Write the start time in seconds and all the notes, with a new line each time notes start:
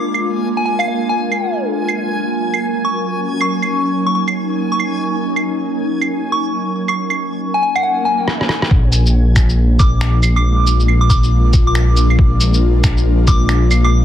Already playing: G#3 A#3 D4 F4 A#4 G#5 D6
0.14 claves
0.57 G#5
0.65 G#5
0.79 F5, claves
0.88 F5
1.09 G#5
1.32 claves
1.75 F#3
1.88 claves
2.47 C#4
2.54 claves
2.85 C#6
3.18 D#4
3.41 C#6, claves
3.62 claves
4.06 C#6
4.15 C#6
4.28 claves
4.72 C#6
4.80 claves
5.36 claves
6.01 claves
6.32 C#6
6.88 C#6, claves
7.10 claves
7.54 G#5
7.62 G#5
7.76 F#5, claves
7.83 F#5, swell
8.05 G#5
8.28 cross-stick
8.41 cross-stick
8.49 cross-stick
8.62 cross-stick
8.71 A#1 G#3, kick
8.93 cabasa, shaker
9.06 shaker
9.16 A#3
9.36 finger snap, kick, cabasa, shaker
9.49 shaker
9.56 D4 F4
9.79 D6, kick, cabasa, shaker
10.01 finger snap, shaker
10.23 cabasa, claves, shaker
10.31 A#4
10.36 D6, claves
10.67 cabasa, shaker
10.80 shaker
10.88 claves
11.01 D6
11.10 D6, kick, cabasa, shaker
11.23 shaker
11.53 kick, cabasa, shaker
11.67 D6
11.75 finger snap, shaker
11.97 cabasa, shaker
12.10 claves
12.19 kick
12.41 cabasa, shaker
12.54 shaker
12.84 finger snap, kick, cabasa, shaker
12.97 shaker
13.27 D6, kick, cabasa, shaker
13.49 finger snap, shaker
13.71 cabasa, claves, shaker
13.84 D6, claves